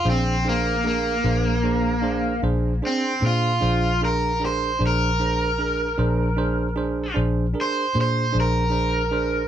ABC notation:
X:1
M:12/8
L:1/8
Q:3/8=51
K:Bb
V:1 name="Overdriven electric guitar"
C B, B,4 z C F2 B c | B6 z c c B3 |]
V:2 name="Tine electric piano"
[D_Ac] [DAc] [DAB] [DAc] [DAc] [DAc] [DAc] [DAc] [DAc] [DAc] [DAB] [DAB] | [D_Ac] [DAc] [DAB] [DAc] [DAc] [DAc] [DAc] [DAB] [DAc] [DAc] [DAc] [DAc] |]
V:3 name="Fingered electric bass" clef=bass
B,,,3 B,,,3 B,,, z B,, B,,,3 | B,,,3 B,,,3 B,,, z B,, B,,,3 |]